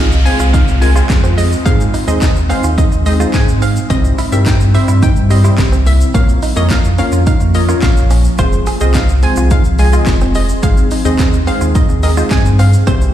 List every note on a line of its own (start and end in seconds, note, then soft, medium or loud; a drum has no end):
0.00 0.29 C2 medium
0.00 1.64 G#3 medium
0.00 1.64 C4 medium
0.00 1.64 F4 loud
0.00 0.17 F5 medium
0.00 downlifter medium
0.12 muted clean electric guitar stroke soft
0.12 shaker medium
0.25 0.59 G#3 medium
0.25 0.59 C4 medium
0.25 0.60 F4 medium
0.25 0.60 G#4 medium
0.25 0.60 C5 medium
0.25 0.35 G#5 medium
0.25 open hi-hat medium
0.25 shaker soft
0.39 0.62 C2 medium
0.39 0.49 F4 medium
0.39 shaker medium
0.53 0.63 D#4 medium
0.53 0.73 F5 medium
0.53 kick loud
0.53 closed hi-hat medium
0.53 shaker medium
0.68 1.02 C2 medium
0.68 shaker medium
0.81 0.90 G#3 medium
0.81 0.90 C4 medium
0.81 0.90 F4 medium
0.81 0.90 G#4 medium
0.81 0.90 A#4 medium
0.81 0.91 G#5 medium
0.81 muted clean electric guitar stroke soft
0.81 open hi-hat medium
0.81 shaker medium
0.96 1.38 G#3 medium
0.96 1.38 C4 medium
0.96 1.05 F4 medium
0.96 1.38 F4 medium
0.96 1.38 G#4 medium
0.96 1.38 C5 medium
0.96 shaker medium
1.10 1.55 F2 medium
1.10 muted clean electric guitar stroke soft
1.10 kick loud
1.10 snare loud
1.10 clap loud
1.10 closed hi-hat medium
1.10 shaker medium
1.24 1.33 C4 medium
1.24 shaker medium
1.38 1.47 G#3 medium
1.38 1.48 D#5 medium
1.38 open hi-hat medium
1.38 shaker medium
1.52 shaker medium
1.65 1.89 G#2 loud
1.65 1.91 G#3 medium
1.65 1.75 G#3 medium
1.65 3.88 G#3 medium
1.65 1.91 C4 medium
1.65 6.10 C4 medium
1.65 1.91 D#4 medium
1.65 3.88 D#4 loud
1.65 1.91 G#4 medium
1.65 1.91 C5 medium
1.65 1.85 F5 loud
1.65 kick loud
1.65 closed hi-hat medium
1.65 shaker medium
1.80 shaker medium
1.94 2.03 D#4 medium
1.94 open hi-hat medium
1.94 shaker medium
2.07 2.53 D#2 medium
2.07 2.33 G#3 medium
2.07 2.33 C4 medium
2.07 2.33 D#4 medium
2.07 2.33 G#4 medium
2.07 2.33 C5 medium
2.07 2.18 D#5 medium
2.07 muted clean electric guitar stroke soft
2.07 shaker medium
2.22 2.42 D#5 medium
2.22 muted clean electric guitar stroke soft
2.22 kick loud
2.22 snare loud
2.22 clap loud
2.22 closed hi-hat medium
2.22 shaker medium
2.36 shaker medium
2.49 2.84 G#3 medium
2.49 2.84 C4 medium
2.49 2.59 C4 medium
2.49 2.84 D#4 medium
2.49 2.84 G#4 medium
2.49 2.84 C5 medium
2.49 2.59 F5 medium
2.49 open hi-hat medium
2.49 shaker soft
2.64 2.87 D#2 medium
2.64 2.74 F4 medium
2.64 shaker medium
2.78 2.87 D#4 medium
2.78 2.98 D#5 medium
2.78 kick loud
2.78 closed hi-hat medium
2.78 shaker medium
2.92 3.26 D#2 medium
2.92 muted clean electric guitar stroke soft
2.92 shaker medium
3.06 3.14 G#3 medium
3.06 3.15 C4 medium
3.06 3.15 D#4 medium
3.06 3.15 G#4 medium
3.06 3.15 C5 medium
3.06 3.16 D#5 medium
3.06 open hi-hat medium
3.06 shaker medium
3.20 3.62 G#3 medium
3.20 3.62 C4 medium
3.20 3.62 D#4 medium
3.20 3.30 F4 medium
3.20 3.62 G#4 medium
3.20 3.62 C5 medium
3.20 shaker medium
3.34 3.80 G#2 loud
3.34 3.44 G#5 medium
3.34 kick loud
3.34 snare loud
3.34 clap loud
3.34 closed hi-hat medium
3.34 shaker medium
3.48 shaker medium
3.62 3.72 C4 medium
3.62 3.72 F5 medium
3.62 open hi-hat medium
3.62 shaker medium
3.76 shaker medium
3.90 4.13 C2 loud
3.90 4.15 G3 medium
3.90 6.12 G3 medium
3.90 3.99 C4 loud
3.90 4.16 C4 medium
3.90 6.12 E4 loud
3.90 4.16 E4 medium
3.90 4.16 G4 medium
3.90 4.16 C5 medium
3.90 4.10 D#5 loud
3.90 kick loud
3.90 closed hi-hat medium
3.90 shaker medium
4.04 muted clean electric guitar stroke soft
4.04 shaker medium
4.18 4.28 E4 medium
4.18 open hi-hat medium
4.18 shaker medium
4.32 4.78 G2 medium
4.32 4.58 G3 medium
4.32 4.58 C4 medium
4.32 4.58 E4 medium
4.32 4.58 G4 medium
4.32 4.58 A#4 medium
4.32 4.42 E5 medium
4.32 shaker medium
4.46 4.56 D#4 medium
4.46 4.66 G5 medium
4.46 kick loud
4.46 snare loud
4.46 clap loud
4.46 closed hi-hat medium
4.46 shaker medium
4.60 muted clean electric guitar stroke soft
4.60 shaker medium
4.74 5.08 G3 medium
4.74 5.08 C4 medium
4.74 5.08 E4 medium
4.74 5.08 G4 medium
4.74 5.08 C5 medium
4.74 4.84 E5 medium
4.74 open hi-hat medium
4.74 shaker soft
4.88 5.11 G2 loud
4.88 4.98 E4 medium
4.88 shaker medium
5.02 5.12 D#4 medium
5.02 5.22 G5 loud
5.02 kick loud
5.02 closed hi-hat medium
5.02 shaker medium
5.16 5.51 G2 medium
5.16 shaker medium
5.30 5.39 G3 medium
5.30 5.39 C4 medium
5.30 5.39 E4 medium
5.30 5.39 G4 medium
5.30 5.39 C5 medium
5.30 5.40 D#5 medium
5.30 muted clean electric guitar stroke soft
5.30 open hi-hat medium
5.30 shaker medium
5.44 5.86 G3 medium
5.44 5.86 C4 medium
5.44 5.87 E4 medium
5.44 5.54 E4 medium
5.44 5.87 G4 medium
5.44 5.87 C5 medium
5.44 shaker medium
5.58 6.04 C2 loud
5.58 muted clean electric guitar stroke soft
5.58 kick loud
5.58 snare loud
5.58 clap loud
5.58 closed hi-hat medium
5.58 shaker medium
5.72 5.82 C4 medium
5.72 shaker medium
5.86 5.96 A#3 medium
5.86 5.97 E5 medium
5.86 open hi-hat medium
5.86 shaker medium
6.01 shaker medium
6.14 6.37 A#1 loud
6.14 10.59 F3 medium
6.14 6.40 A#3 medium
6.14 6.24 A#3 loud
6.14 8.37 A#3 medium
6.14 6.40 C#4 medium
6.14 8.37 C#4 medium
6.14 6.40 F4 medium
6.14 6.40 A#4 medium
6.14 6.40 C#5 medium
6.14 6.34 F5 loud
6.14 kick loud
6.14 closed hi-hat medium
6.14 shaker medium
6.29 shaker medium
6.42 6.52 D#4 medium
6.42 open hi-hat medium
6.42 shaker medium
6.56 7.02 F2 medium
6.56 6.82 A#3 medium
6.56 6.82 C#4 medium
6.56 6.82 F4 medium
6.56 6.82 A#4 medium
6.56 6.82 C#5 medium
6.56 6.67 D#5 medium
6.56 muted clean electric guitar stroke soft
6.56 shaker medium
6.70 6.91 F5 medium
6.70 muted clean electric guitar stroke soft
6.70 kick loud
6.70 snare loud
6.70 clap loud
6.70 closed hi-hat medium
6.70 shaker medium
6.84 shaker medium
6.98 7.32 A#3 medium
6.98 7.32 C#4 medium
6.98 7.08 C#4 medium
6.98 7.32 F4 medium
6.98 7.33 A#4 medium
6.98 7.33 C#5 medium
6.98 7.09 F5 medium
6.98 open hi-hat medium
6.98 shaker soft
7.12 7.35 F2 medium
7.12 7.22 F4 medium
7.12 shaker medium
7.26 7.36 D#4 medium
7.26 7.46 F5 medium
7.26 kick loud
7.26 closed hi-hat medium
7.26 shaker medium
7.40 7.75 F2 medium
7.40 muted clean electric guitar stroke soft
7.40 shaker medium
7.55 7.63 A#3 medium
7.55 7.63 C#4 medium
7.55 7.63 F4 medium
7.55 7.63 A#4 medium
7.55 7.63 C#5 medium
7.55 7.65 D#5 medium
7.55 open hi-hat medium
7.55 shaker medium
7.68 8.11 A#3 medium
7.68 8.11 C#4 medium
7.68 7.78 F4 medium
7.68 8.11 F4 medium
7.68 8.11 A#4 medium
7.68 8.11 C#5 medium
7.68 shaker medium
7.82 8.28 A#1 medium
7.82 8.22 F5 medium
7.82 kick loud
7.82 snare loud
7.82 clap loud
7.82 closed hi-hat medium
7.82 shaker medium
7.97 shaker medium
8.11 8.20 C#4 medium
8.11 open hi-hat medium
8.11 shaker medium
8.25 shaker medium
8.39 8.62 F1 loud
8.39 8.64 G#3 medium
8.39 12.84 C4 medium
8.39 8.64 C4 medium
8.39 8.48 F4 loud
8.39 8.64 F4 medium
8.39 12.84 G#4 medium
8.39 8.64 G#4 medium
8.39 8.58 C5 loud
8.39 8.64 C5 medium
8.39 kick loud
8.39 closed hi-hat medium
8.39 shaker medium
8.53 muted clean electric guitar stroke soft
8.53 shaker medium
8.67 8.76 G#4 medium
8.67 open hi-hat medium
8.67 shaker medium
8.81 9.26 C2 medium
8.81 9.06 G#3 medium
8.81 9.06 C4 medium
8.81 9.06 F4 medium
8.81 9.06 G#4 medium
8.81 9.06 C5 medium
8.81 8.91 D#5 medium
8.81 shaker medium
8.94 9.05 D#4 medium
8.94 9.15 F5 medium
8.94 kick loud
8.94 snare loud
8.94 clap loud
8.94 closed hi-hat medium
8.94 shaker medium
9.09 muted clean electric guitar stroke soft
9.09 shaker medium
9.22 9.57 G#3 medium
9.22 9.57 C4 medium
9.22 9.57 F4 medium
9.22 9.57 G#4 medium
9.22 9.57 C5 medium
9.22 9.33 G#5 medium
9.22 open hi-hat medium
9.22 shaker soft
9.36 9.60 C2 medium
9.36 9.47 F4 medium
9.36 shaker medium
9.51 9.60 D#4 medium
9.51 9.71 F5 medium
9.51 kick loud
9.51 closed hi-hat medium
9.51 shaker medium
9.64 9.99 C2 medium
9.64 shaker medium
9.79 9.87 G#3 medium
9.79 9.87 C4 medium
9.79 9.87 F4 medium
9.79 9.88 G#4 medium
9.79 9.88 D#5 medium
9.79 9.89 G#5 medium
9.79 muted clean electric guitar stroke soft
9.79 open hi-hat medium
9.79 shaker medium
9.93 10.35 G#3 medium
9.93 10.35 C4 medium
9.93 10.35 F4 medium
9.93 10.03 F4 medium
9.93 10.35 G#4 medium
9.93 10.35 D#5 medium
9.93 shaker medium
10.07 10.52 F1 medium
10.07 kick loud
10.07 snare medium
10.07 clap loud
10.07 closed hi-hat medium
10.07 shaker medium
10.21 10.31 C4 medium
10.21 shaker medium
10.35 10.45 G#3 medium
10.35 10.45 D#5 medium
10.35 open hi-hat medium
10.35 shaker medium
10.49 shaker medium
10.62 10.86 G#1 loud
10.62 12.85 D#3 medium
10.62 10.88 G#3 medium
10.62 10.73 G#3 medium
10.62 10.88 C4 medium
10.62 10.88 D#4 medium
10.62 10.88 G#4 medium
10.62 10.88 C5 medium
10.62 10.83 F5 loud
10.62 kick loud
10.62 closed hi-hat medium
10.62 shaker medium
10.77 shaker medium
10.91 11.01 D#4 medium
10.91 open hi-hat medium
10.91 shaker medium
11.05 11.51 D#2 medium
11.05 11.30 G#3 medium
11.05 11.30 C4 medium
11.05 11.30 D#4 medium
11.05 11.31 G#4 medium
11.05 11.31 C5 medium
11.05 11.15 D#5 medium
11.05 muted clean electric guitar stroke medium
11.05 shaker medium
11.19 11.39 D#5 medium
11.19 muted clean electric guitar stroke soft
11.19 kick loud
11.19 snare medium
11.19 clap loud
11.19 closed hi-hat medium
11.19 shaker medium
11.33 shaker medium
11.47 11.81 G#3 medium
11.47 11.81 C4 medium
11.47 11.57 C4 medium
11.47 11.81 D#4 medium
11.47 11.81 G#4 medium
11.47 11.81 C5 medium
11.47 11.57 F5 medium
11.47 open hi-hat medium
11.47 shaker soft
11.61 11.84 D#2 medium
11.61 11.71 F4 medium
11.61 shaker medium
11.75 11.85 D#4 medium
11.75 11.95 D#5 medium
11.75 kick loud
11.75 closed hi-hat medium
11.75 shaker medium
11.89 12.23 D#2 medium
11.89 muted clean electric guitar stroke soft
11.89 shaker medium
12.03 12.12 G#3 medium
12.03 12.12 C4 medium
12.03 12.12 D#4 medium
12.03 12.12 G#4 medium
12.03 12.12 A#4 medium
12.03 12.13 D#5 medium
12.03 open hi-hat medium
12.03 shaker medium
12.17 12.59 G#3 medium
12.17 12.60 C4 medium
12.17 12.60 D#4 medium
12.17 12.27 F4 medium
12.17 12.60 G#4 medium
12.17 12.60 C5 medium
12.17 shaker medium
12.31 12.77 G2 medium
12.31 12.41 G#5 medium
12.31 kick loud
12.31 snare loud
12.31 clap loud
12.31 closed hi-hat medium
12.31 shaker medium
12.45 shaker medium
12.59 12.69 C4 medium
12.59 12.69 F5 medium
12.59 open hi-hat medium
12.59 shaker medium
12.74 shaker medium
12.87 13.10 C2 loud
12.87 13.14 E3 medium
12.87 13.13 G3 medium
12.87 13.14 G3 medium
12.87 12.97 C4 loud
12.87 13.13 C4 medium
12.87 13.14 C4 loud
12.87 13.13 E4 medium
12.87 13.13 G4 medium
12.87 13.07 C5 loud
12.87 13.13 C5 medium
12.87 kick loud
12.87 closed hi-hat medium
12.87 shaker medium
13.01 muted clean electric guitar stroke soft
13.01 shaker medium